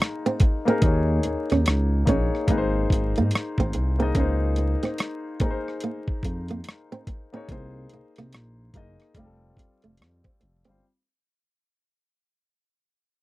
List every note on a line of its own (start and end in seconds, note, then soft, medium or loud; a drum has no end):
0.00 0.14 A#3 medium
0.00 0.14 D#4 medium
0.00 0.15 G#4 medium
0.00 0.15 D#5 medium
0.00 cross-stick medium
0.26 0.38 C4 medium
0.40 muted nylon-string guitar stroke soft
0.40 kick medium
0.40 closed hi-hat medium
0.65 0.79 A#3 medium
0.65 0.80 C4 medium
0.65 0.79 D#4 medium
0.65 0.80 G#4 medium
0.69 0.81 A#4 medium
0.81 1.20 D#2 loud
0.81 1.89 A#3 medium
0.81 1.02 D#4 medium
0.81 1.90 D#4 medium
0.81 1.90 G#4 medium
0.81 kick loud
0.81 closed hi-hat medium
0.86 1.91 C#5 medium
1.23 1.36 D#2 soft
1.23 muted nylon-string guitar stroke soft
1.23 closed hi-hat medium
1.50 1.65 D#2 medium
1.50 1.63 C#4 medium
1.50 cross-stick soft
1.50 closed hi-hat soft
1.66 2.04 C#2 medium
1.66 cross-stick loud
1.66 closed hi-hat medium
2.05 2.31 A#1 medium
2.05 2.45 A#3 medium
2.05 2.28 C#4 medium
2.05 2.47 D#4 medium
2.05 2.49 G#4 medium
2.05 kick medium
2.05 closed hi-hat medium
2.09 2.50 C#5 medium
2.35 cross-stick soft
2.47 2.86 G#1 loud
2.47 3.69 A#3 medium
2.47 2.70 A#3 medium
2.47 3.70 D#4 medium
2.47 3.71 G#4 medium
2.47 kick medium
2.47 closed hi-hat medium
2.51 2.58 B4 medium
2.58 3.74 C5 medium
2.90 3.14 G#1 medium
2.90 muted nylon-string guitar stroke soft
2.90 kick medium
2.90 closed hi-hat medium
3.16 3.31 G#2 medium
3.16 3.29 A#3 medium
3.16 closed hi-hat soft
3.31 closed hi-hat medium
3.35 cross-stick loud
3.58 3.72 G#1 medium
3.58 3.71 C4 medium
3.58 kick medium
3.73 4.12 C2 medium
3.73 muted nylon-string guitar stroke soft
3.73 closed hi-hat medium
3.99 4.12 A#3 medium
3.99 4.12 C4 medium
3.99 4.12 D#4 medium
3.99 4.13 G#4 medium
3.99 4.14 D#5 medium
4.15 4.76 C#2 loud
4.15 5.23 A#3 medium
4.15 4.36 C#4 medium
4.15 5.23 D#4 medium
4.15 5.24 G#4 medium
4.15 kick medium
4.15 closed hi-hat medium
4.20 5.25 C5 medium
4.56 muted nylon-string guitar stroke soft
4.56 closed hi-hat soft
4.83 4.95 C4 medium
4.83 cross-stick soft
4.83 closed hi-hat soft
4.98 cross-stick loud
4.98 closed hi-hat medium
5.40 6.80 A#3 medium
5.40 5.61 C4 medium
5.40 6.81 D#4 medium
5.40 6.81 G#4 medium
5.40 kick medium
5.40 closed hi-hat medium
5.44 5.50 A#4 medium
5.51 6.85 C5 medium
5.68 cross-stick soft
5.80 6.03 A#3 medium
5.80 closed hi-hat medium
6.08 kick medium
6.23 6.61 F2 medium
6.23 muted nylon-string guitar stroke soft
6.23 kick medium
6.23 closed hi-hat medium
6.48 6.62 A#3 medium
6.48 closed hi-hat soft
6.64 closed hi-hat medium
6.69 cross-stick medium
6.92 7.04 C4 medium
7.07 muted nylon-string guitar stroke soft
7.07 kick medium
7.07 closed hi-hat medium
7.33 7.46 A#3 medium
7.33 7.46 C4 medium
7.33 7.46 D#4 medium
7.33 7.47 G#4 medium
7.33 7.47 C#5 medium
7.49 7.86 C2 medium
7.49 8.56 A#3 medium
7.49 7.71 C4 medium
7.49 8.57 D#4 medium
7.49 8.57 G#4 medium
7.49 8.58 C5 medium
7.49 kick medium
7.49 closed hi-hat medium
7.90 8.02 C2 soft
7.90 muted nylon-string guitar stroke soft
7.90 closed hi-hat soft
8.16 8.36 C2 medium
8.16 8.30 A#3 medium
8.16 cross-stick soft
8.16 closed hi-hat soft
8.33 8.70 A#1 medium
8.33 cross-stick medium
8.33 closed hi-hat medium
8.74 8.97 F#1 medium
8.74 9.15 A#3 medium
8.74 8.95 A#3 medium
8.74 9.16 D#4 medium
8.74 9.16 G#4 medium
8.74 9.17 D#5 medium
8.74 kick medium
8.74 closed hi-hat medium
9.00 cross-stick soft
9.00 closed hi-hat soft
9.14 9.53 F1 loud
9.14 10.36 G3 medium
9.14 9.36 A3 medium
9.14 10.37 C4 medium
9.14 10.38 F4 medium
9.14 kick medium
9.14 closed hi-hat medium
9.19 9.25 G4 medium
9.26 10.42 A4 medium
9.57 9.68 F1 soft
9.57 muted nylon-string guitar stroke soft
9.57 kick medium
9.57 closed hi-hat medium
9.82 9.98 F1 medium
9.82 9.96 A3 medium
9.82 closed hi-hat soft
9.97 10.22 F2 medium
9.97 closed hi-hat medium
10.02 cross-stick loud
10.24 10.37 C4 medium
10.24 kick medium
10.40 10.64 F1 medium
10.40 muted nylon-string guitar stroke soft
10.40 closed hi-hat soft
10.64 10.81 G1 medium
10.64 10.80 G3 medium
10.64 10.78 C4 medium
10.64 closed hi-hat soft
10.69 10.80 C4 medium
10.69 10.81 F4 medium
10.69 10.81 C5 medium